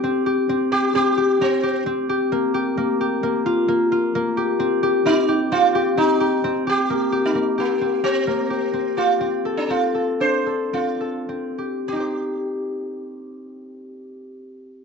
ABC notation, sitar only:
X:1
M:5/4
L:1/16
Q:1/4=131
K:Cdor
V:1 name="Sitar"
z6 G2 G4 C4 z4 | z16 z4 | z4 E4 F4 E6 G2- | G3 E3 B,4 C8 F2- |
F3 D F4 c4 F6 z2 | G16- G4 |]